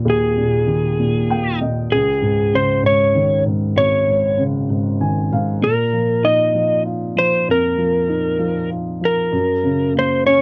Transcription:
0.00 0.05 D#2 soft
0.00 0.38 A#2 soft
0.00 0.67 D#3 soft
0.00 0.64 A#3 soft
0.05 1.87 D#2 medium
0.10 1.58 G#4 medium
0.38 0.98 A#2 soft
0.67 1.87 D#3 soft
0.99 1.60 A#2 soft
1.30 1.90 A#3 soft
1.30 1.59 G5 medium
1.61 1.91 A#2 soft
1.61 1.90 D#5 soft
1.92 3.73 C#2 soft
1.92 2.55 G#4 medium
2.22 2.81 G#2 soft
2.54 3.73 C#3 soft
2.54 2.86 C5 medium
2.83 3.44 G#2 soft
2.83 3.43 C#5 medium
3.15 4.35 D#3 soft
3.46 4.06 G#2 soft
3.76 5.58 G#1 medium
3.76 4.43 C#5 medium
4.08 4.68 G#2 soft
4.38 5.58 C#3 soft
4.70 5.31 G#2 soft
5.01 5.61 D#3 soft
5.01 5.29 G#5 soft
5.32 5.62 G#2 soft
5.32 5.61 F5 medium
5.62 7.44 A#2 soft
5.62 6.27 A#4 medium
5.93 6.53 F3 soft
6.23 7.43 D#4 soft
6.23 6.82 D#5 medium
6.55 7.15 F3 soft
6.86 8.06 F4 soft
7.16 7.76 F3 soft
7.16 7.50 C5 medium
7.48 9.29 F2 soft
7.48 8.69 A#4 medium
7.78 8.37 F3 soft
8.08 9.29 D#4 soft
8.39 9.00 F3 soft
8.70 9.31 F4 soft
9.01 9.32 F3 soft
9.05 9.92 A#4 medium
9.32 10.42 F#2 soft
9.64 10.42 C#3 soft
9.94 10.42 A#3 soft
9.99 10.26 C5 medium
10.26 10.42 C#4 soft
10.26 10.42 C#5 medium

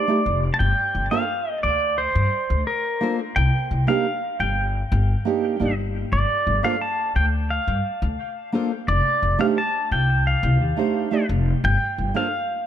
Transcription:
0.00 0.39 D5 medium
0.08 0.19 A3 medium
0.08 0.19 D4 medium
0.08 0.20 D#4 medium
0.08 0.20 G4 medium
0.08 0.20 D5 medium
0.26 0.48 F1 medium
0.54 0.59 A5 medium
0.59 0.71 G1 loud
0.59 1.08 G5 loud
0.95 1.06 G1 medium
1.11 1.22 A#3 medium
1.11 1.23 D4 medium
1.11 1.23 F4 medium
1.11 1.23 A4 medium
1.11 1.23 C5 medium
1.11 1.60 F5 loud
1.63 2.05 D2 medium
1.63 1.99 D5 medium
1.98 2.67 C5 medium
2.15 2.26 G2 loud
2.50 2.61 D2 loud
2.67 3.15 A#4 medium
3.01 3.18 A#3 medium
3.01 3.19 D4 medium
3.01 3.19 F4 medium
3.01 3.19 A4 medium
3.01 3.20 C5 medium
3.36 3.47 C2 loud
3.36 3.88 G5 loud
3.71 3.82 C2 medium
3.87 4.05 A#3 medium
3.87 4.05 D4 medium
3.87 4.05 D#4 medium
3.87 4.06 G4 medium
3.87 4.06 C5 medium
3.87 4.36 F5 medium
4.40 4.81 G1 medium
4.40 5.74 G5 medium
4.92 5.13 G1 loud
5.25 5.56 A#3 medium
5.25 5.56 D4 medium
5.25 5.56 D#4 medium
5.25 5.57 G4 medium
5.25 5.57 C5 medium
5.60 6.02 G1 medium
5.60 5.71 A#3 medium
5.60 5.71 D4 medium
5.60 5.71 D#4 medium
5.60 5.72 G4 medium
5.60 5.72 D5 medium
6.12 6.23 G1 loud
6.12 6.64 D5 medium
6.47 6.58 G1 medium
6.63 6.74 A#3 medium
6.63 6.74 D4 medium
6.63 6.75 F4 medium
6.63 6.75 A4 medium
6.63 6.75 C5 medium
6.63 6.80 F5 loud
6.82 7.13 A5 loud
7.16 7.57 D2 medium
7.16 7.25 G5 loud
7.50 8.50 F5 medium
7.67 7.78 G2 medium
8.02 8.13 D2 loud
8.52 8.70 A#3 medium
8.52 8.70 D4 medium
8.52 8.71 F4 medium
8.52 8.71 A4 medium
8.52 8.71 C5 loud
8.88 8.99 F1 loud
8.88 9.40 D5 loud
9.22 9.33 F1 medium
9.39 9.56 A3 medium
9.39 9.57 D4 medium
9.39 9.57 D#4 medium
9.39 9.57 G4 medium
9.39 9.57 C5 loud
9.39 9.46 F5 loud
9.58 9.92 A5 loud
9.91 10.33 C2 medium
9.91 10.24 G5 loud
10.27 11.26 F5 medium
10.43 10.60 C2 loud
10.60 10.71 D#2 loud
10.77 11.07 A3 medium
10.77 11.08 D4 medium
10.77 11.08 D#4 medium
10.77 11.08 G4 medium
10.77 11.09 C5 medium
11.11 11.22 A3 medium
11.11 11.23 D4 medium
11.11 11.23 D#4 medium
11.11 11.23 G4 medium
11.11 11.23 D5 medium
11.29 11.51 F1 loud
11.64 11.75 G1 loud
11.64 12.13 G5 loud
11.98 12.09 G1 medium
12.14 12.26 A#3 medium
12.14 12.26 D4 medium
12.14 12.26 F4 medium
12.14 12.27 A4 medium
12.14 12.27 C5 medium
12.14 12.67 F5 loud

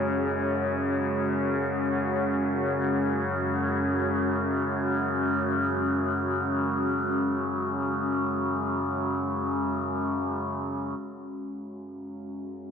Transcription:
0.00 11.01 F#2 medium
0.00 11.01 C#3 medium
0.00 12.71 G#3 medium
0.00 12.71 C#4 medium
0.00 10.99 F#4 medium
0.00 12.71 F#4 medium
11.02 12.71 F#2 medium
11.02 12.71 C#3 medium

